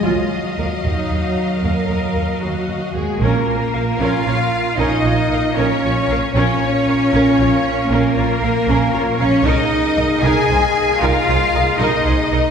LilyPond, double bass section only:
\new Staff \with { instrumentName = "Double bass section" } { \clef bass \time 12/8 \key bes \minor \tempo 4. = 77 ees,8 r8 ees,8 ees,8 ees,8 r8 ees,8 ees,8 ees,8 ees,8 ees,8 ees,8 | bes,,8 r8 bes,,8 bes,,8 bes,,8 r8 bes,,8 bes,,8 bes,,8 bes,,8 bes,,8 bes,,8 | bes,,8 r8 bes,,8 bes,,8 bes,,8 r8 bes,,8 bes,,8 bes,,8 bes,,8 bes,,8 bes,,8 | c,8 r8 c,8 c,8 c,8 r8 c,8 c,8 c,8 c,8 c,8 c,8 | }